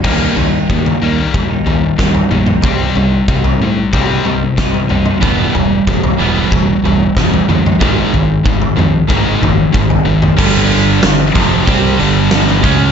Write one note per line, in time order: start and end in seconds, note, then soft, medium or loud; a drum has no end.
0.02 0.28 D#2 medium
0.02 0.33 D#3 medium
0.02 0.35 D#3 medium
0.02 0.36 G3 medium
0.02 0.35 G3 medium
0.02 0.36 A#3 loud
0.02 0.36 A#3 medium
0.02 0.37 D#4 loud
0.02 kick loud
0.02 floor tom medium
0.02 crash loud
0.35 0.60 D#2 medium
0.35 0.67 D#3 medium
0.35 0.66 D#3 medium
0.35 0.69 G3 medium
0.35 0.67 G3 medium
0.35 0.69 A#3 medium
0.35 0.70 D#4 medium
0.35 floor tom medium
0.68 0.93 D#2 medium
0.68 0.99 D#3 medium
0.68 1.02 G3 medium
0.68 0.99 G3 medium
0.68 1.02 A#3 medium
0.68 1.03 D#4 loud
0.68 kick loud
0.86 floor tom medium
1.01 1.25 D#2 medium
1.01 1.50 D#3 medium
1.01 1.32 D#3 medium
1.01 1.19 G3 medium
1.01 1.33 G3 medium
1.01 1.33 A#3 medium
1.01 1.18 A#3 medium
1.01 1.17 D#4 medium
1.19 muted clean electric guitar stroke soft
1.34 1.58 D#2 medium
1.34 1.63 D#3 medium
1.34 1.64 G3 medium
1.34 kick loud
1.34 floor tom medium
1.49 1.66 G3 medium
1.49 1.66 A#3 medium
1.49 1.67 D#4 medium
1.65 1.90 D#2 medium
1.65 1.95 D#3 medium
1.65 1.96 D#3 medium
1.65 1.96 G3 medium
1.65 1.83 G3 medium
1.65 1.82 A#3 medium
1.65 1.81 D#4 medium
1.65 floor tom medium
1.83 muted clean electric guitar stroke soft
1.97 2.22 D#2 medium
1.97 2.29 D#3 medium
1.97 2.28 D#3 medium
1.97 2.31 G3 medium
1.97 2.28 G3 medium
1.97 2.31 A#3 medium
1.97 2.32 D#4 loud
1.97 kick loud
1.97 snare medium
2.15 floor tom medium
2.31 2.55 A#1 medium
2.31 2.62 D#3 medium
2.31 2.61 D#3 medium
2.31 2.60 G3 medium
2.31 2.50 G3 medium
2.31 2.48 A#3 medium
2.31 2.46 D#4 medium
2.31 mid tom medium
2.46 2.63 A#3 medium
2.46 2.62 D#4 medium
2.46 mid tom medium
2.50 2.63 G3 medium
2.62 2.87 C2 medium
2.62 2.95 C3 medium
2.62 2.96 G3 medium
2.62 2.95 G3 medium
2.62 2.96 C4 loud
2.62 2.95 C4 medium
2.62 2.98 D#4 loud
2.62 kick loud
2.62 floor tom medium
2.96 3.20 C2 medium
2.96 3.27 C3 medium
2.96 3.26 C3 medium
2.96 3.26 G3 medium
2.96 3.27 G3 medium
2.96 3.28 C4 medium
2.96 3.30 D#4 medium
2.96 floor tom medium
3.28 3.52 C2 loud
3.28 3.59 C3 medium
3.28 3.58 C3 medium
3.28 3.60 G3 medium
3.28 3.59 G3 medium
3.28 3.62 C4 loud
3.28 3.62 D#4 loud
3.28 kick loud
3.44 floor tom medium
3.60 3.84 A2 medium
3.60 4.09 C3 medium
3.60 3.90 C3 medium
3.60 3.76 G3 medium
3.60 3.91 G3 medium
3.60 3.76 C4 medium
3.60 3.76 D#4 medium
3.77 muted clean electric guitar stroke medium
3.93 4.17 C2 medium
3.93 4.24 C3 medium
3.93 4.24 G3 medium
3.93 4.24 C4 medium
3.93 kick loud
3.93 floor tom medium
4.09 4.26 G3 medium
4.09 4.27 C4 medium
4.09 4.28 D#4 medium
4.25 4.49 C2 medium
4.25 4.55 C3 medium
4.25 4.57 C3 medium
4.25 4.55 G3 medium
4.25 4.43 G3 medium
4.25 4.42 C4 medium
4.25 floor tom medium
4.29 4.41 D#4 medium
4.43 muted clean electric guitar stroke soft
4.57 4.81 C2 medium
4.57 4.87 C3 medium
4.57 4.88 C3 medium
4.57 4.87 G3 medium
4.57 4.89 G3 medium
4.57 4.90 C4 medium
4.57 4.91 D#4 loud
4.57 kick loud
4.57 snare medium
4.74 floor tom medium
4.89 5.14 C2 medium
4.89 5.20 C3 medium
4.89 5.19 C3 medium
4.89 5.19 G3 medium
4.89 5.09 G3 medium
4.89 5.08 C4 medium
4.89 5.06 D#4 medium
4.89 mid tom medium
5.06 5.22 C4 medium
5.06 5.21 D#4 medium
5.06 mid tom medium
5.10 5.22 G3 medium
5.21 5.46 E1 medium
5.21 5.52 E3 medium
5.21 5.53 G3 medium
5.21 5.53 B3 loud
5.21 kick loud
5.21 floor tom medium
5.55 5.79 E1 medium
5.55 5.84 E3 medium
5.55 5.84 G3 medium
5.55 floor tom medium
5.87 6.10 E1 medium
5.87 6.16 E3 medium
5.87 6.17 G3 medium
5.87 kick loud
6.04 floor tom medium
6.20 6.43 E1 medium
6.20 6.50 E3 medium
6.20 6.50 G3 medium
6.20 6.51 B3 medium
6.52 6.75 E1 medium
6.52 6.81 E3 medium
6.52 6.82 G3 medium
6.52 kick loud
6.52 floor tom medium
6.83 7.07 E1 medium
6.83 7.14 E3 medium
6.83 7.14 G3 medium
6.83 floor tom medium
7.17 7.40 E1 medium
7.17 7.46 E3 medium
7.17 7.46 G3 medium
7.17 kick loud
7.17 snare medium
7.34 floor tom medium
7.49 7.72 D2 medium
7.49 7.78 E3 medium
7.49 7.78 G3 medium
7.49 mid tom medium
7.66 mid tom medium
7.81 8.04 G#1 medium
7.81 8.11 G#2 medium
7.81 8.11 D#3 medium
7.81 8.12 G#3 medium
7.81 kick loud
7.81 floor tom medium
8.13 8.36 G#1 medium
8.13 8.42 G#2 medium
8.13 8.43 D#3 medium
8.13 floor tom medium
8.45 8.69 G#1 loud
8.45 8.75 G#2 medium
8.45 8.75 D#3 medium
8.45 kick loud
8.62 floor tom medium
8.77 9.01 F2 medium
8.77 9.06 G#2 medium
8.77 9.06 D#3 medium
8.77 mid tom medium
9.08 9.33 G#1 medium
9.08 9.40 G#2 medium
9.08 9.40 D#3 medium
9.08 9.40 G#3 loud
9.08 kick loud
9.08 floor tom medium
9.41 9.66 G#1 medium
9.41 9.71 G#2 medium
9.41 9.71 D#3 medium
9.41 floor tom medium
9.41 mid tom medium
9.73 9.98 G#1 medium
9.73 10.03 G#2 medium
9.73 10.03 D#3 medium
9.73 kick loud
9.90 floor tom medium
10.05 10.30 G#1 medium
10.05 10.35 G#2 medium
10.05 10.35 D#3 medium
10.22 mid tom medium
10.37 10.99 G1 loud
10.37 11.01 G2 medium
10.37 11.02 D3 medium
10.37 11.02 G3 loud
10.37 kick loud
10.37 crash loud
10.55 snare soft
10.70 open hi-hat medium
11.03 11.34 G1 medium
11.03 11.29 G2 medium
11.03 11.29 D3 medium
11.03 snare loud
11.03 open hi-hat medium
11.35 11.66 F1 medium
11.35 11.66 F2 medium
11.35 11.66 C3 medium
11.35 11.67 F3 loud
11.35 kick loud
11.35 open hi-hat medium
11.67 11.98 C2 loud
11.67 11.99 C3 medium
11.67 11.99 G3 loud
11.67 11.99 C4 loud
11.67 kick loud
11.67 open hi-hat medium
11.99 12.61 G1 loud
11.99 12.63 G2 medium
11.99 12.63 D3 loud
11.99 12.63 G3 medium
11.99 open hi-hat medium
12.31 snare loud
12.31 open hi-hat medium
12.47 snare soft
12.63 12.92 C#2 loud
12.63 12.92 C#3 medium
12.63 12.92 G#3 medium
12.63 12.92 C#4 loud
12.63 kick loud
12.63 open hi-hat medium